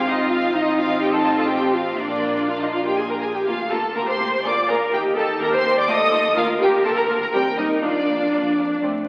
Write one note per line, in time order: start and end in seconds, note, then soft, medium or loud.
0.00 0.52 G#1 medium
0.00 0.53 C4 medium
0.00 0.53 F4 medium
0.07 0.31 D#4 medium
0.07 0.54 F4 medium
0.07 0.32 D#5 medium
0.31 0.54 F4 medium
0.31 0.55 F5 medium
0.54 1.95 A1 medium
0.54 1.95 C4 medium
0.54 0.78 D#4 medium
0.54 1.48 D#4 medium
0.54 1.95 F4 medium
0.54 0.79 D#5 medium
0.77 1.02 F4 medium
0.77 1.02 F5 medium
1.01 1.13 G4 medium
1.01 1.07 G5 medium
1.13 1.21 A4 medium
1.13 1.38 A5 medium
1.37 1.50 A4 medium
1.37 1.51 A5 medium
1.49 1.99 C4 medium
1.49 1.74 G4 medium
1.49 1.74 G5 medium
1.74 1.99 F4 medium
1.74 1.98 F5 medium
1.98 3.24 A#1 soft
1.98 3.27 A#3 medium
1.98 2.47 D4 soft
1.98 3.23 D4 medium
1.98 3.24 F4 soft
1.98 2.48 D5 medium
2.48 2.60 F4 soft
2.48 2.60 F5 medium
2.60 2.65 D#4 soft
2.60 2.73 D#5 medium
2.72 2.85 F4 soft
2.72 2.85 F5 medium
2.85 2.97 G4 medium
2.85 2.97 G5 medium
2.97 3.03 G#4 soft
2.97 3.10 G#5 medium
3.10 3.15 A#4 soft
3.10 3.23 A#5 medium
3.21 3.34 G#4 soft
3.21 3.34 G#5 medium
3.34 3.47 G4 soft
3.34 3.47 G5 medium
3.46 3.91 D2 medium
3.46 3.56 A#3 soft
3.46 3.71 F4 medium
3.46 3.56 F4 medium
3.46 3.70 F5 medium
3.70 3.80 A#3 soft
3.70 3.79 F4 soft
3.70 3.95 A4 medium
3.70 3.96 A5 medium
3.95 4.39 D2 medium
3.95 4.03 A#3 soft
3.95 4.04 F4 soft
3.95 4.41 G4 medium
3.95 4.07 A#4 medium
3.95 4.08 A#5 medium
4.08 4.30 C5 medium
4.08 4.32 C6 medium
4.20 4.28 A#3 soft
4.20 4.28 F4 soft
4.31 4.44 C5 medium
4.31 4.46 C6 medium
4.43 4.87 D2 medium
4.43 4.52 A#3 medium
4.43 4.93 F4 medium
4.43 4.52 G#4 medium
4.43 4.68 D5 medium
4.43 4.70 D6 medium
4.68 4.76 A#3 soft
4.68 4.76 G#4 medium
4.68 4.93 A#4 medium
4.68 4.78 A#5 medium
4.92 5.35 D#2 medium
4.92 5.00 A#3 medium
4.92 5.41 D#4 medium
4.92 5.00 G4 medium
4.92 5.17 G4 medium
4.92 5.01 G5 medium
5.16 5.24 A#3 medium
5.16 5.24 G4 medium
5.16 5.41 A4 medium
5.16 5.41 A5 medium
5.40 5.84 D#2 medium
5.40 5.48 A#3 medium
5.40 5.48 G4 medium
5.40 5.88 G4 medium
5.40 5.53 A#4 medium
5.40 5.48 A#5 medium
5.54 5.77 C5 medium
5.54 5.78 C6 loud
5.64 5.72 A#3 medium
5.64 5.72 G4 medium
5.77 5.89 D5 medium
5.77 5.91 D6 medium
5.88 6.31 D#2 medium
5.88 5.96 A3 medium
5.88 5.96 F4 medium
5.88 6.36 A4 medium
5.88 6.37 D#5 medium
5.88 6.38 D#6 loud
6.12 6.20 A3 medium
6.12 6.20 F4 medium
6.36 6.79 D2 medium
6.36 6.45 A#3 medium
6.36 6.44 F4 medium
6.36 6.60 F4 medium
6.36 7.83 A#4 medium
6.36 6.45 F5 loud
6.60 6.68 A#3 medium
6.60 6.69 F4 medium
6.60 6.85 G4 medium
6.60 6.70 G5 medium
6.85 7.28 D2 medium
6.85 6.93 A#3 medium
6.85 6.93 F4 medium
6.85 6.97 A4 medium
6.85 6.90 A5 medium
6.96 7.19 A#4 medium
6.96 7.04 A#5 loud
7.08 7.17 A#3 medium
7.08 7.16 F4 medium
7.21 7.26 A#4 medium
7.21 7.27 A#5 medium
7.33 7.77 D#2 medium
7.33 7.41 G3 medium
7.33 7.42 C4 medium
7.33 7.41 G4 medium
7.33 7.57 G5 medium
7.57 7.66 G3 soft
7.57 7.66 C4 medium
7.57 7.82 D#4 medium
7.57 7.65 D#5 medium
7.82 8.27 F2 medium
7.82 7.90 A#3 medium
7.82 7.90 D4 medium
7.82 8.83 D4 medium
7.82 8.56 F4 medium
7.82 8.80 D5 medium
8.09 8.17 A#3 soft
8.09 8.17 D4 soft
8.33 8.77 F2 medium
8.33 8.42 A#3 soft
8.33 8.42 D4 soft
8.58 8.67 A#3 soft
8.58 8.81 D4 medium
8.58 8.67 D4 soft
8.82 9.08 F2 soft
8.82 9.07 A3 medium
8.82 8.91 A3 soft
8.82 8.90 C4 soft